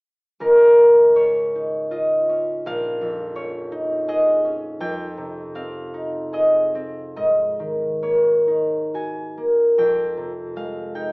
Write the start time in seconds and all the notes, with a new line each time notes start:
0.40 C#2 A#4
0.78 G#2
1.15 C#4 C#5
1.55 D#4
1.91 F4 D#5
2.29 C#4
2.66 A#1 F5
3.01 F2
3.36 C#4 C#5
3.72 D#4
4.08 G#4 D#5
4.45 C#4
4.80 F2 G5
5.17 C3
5.55 C4 F5
5.94 D#4
6.33 G#4 D#5
6.75 C4
7.16 G#2 D#5
7.60 D#3
8.02 A#3 C#5
8.48 D#4
8.94 F#4 G#5
9.38 A#3
9.78 F2 G5
10.17 C3
10.56 G#3 F5
10.95 D#4 G5